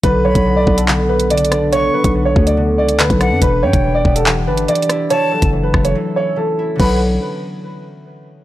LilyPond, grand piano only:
\new Staff \with { instrumentName = "Grand piano" } { \time 4/4 \key b \minor \tempo 4 = 142 b'8 cis''8. d''8 a'16 r8 b'8 d''4 | cis''8 b'8. cis''8 d''16 r8 d''8 b'4 | b'8 cis''8. d''8 a'16 r8 b'8 d''4 | cis''8 a'8. b'8 cis''16 r8 cis''8 a'4 |
b'8 r2. r8 | }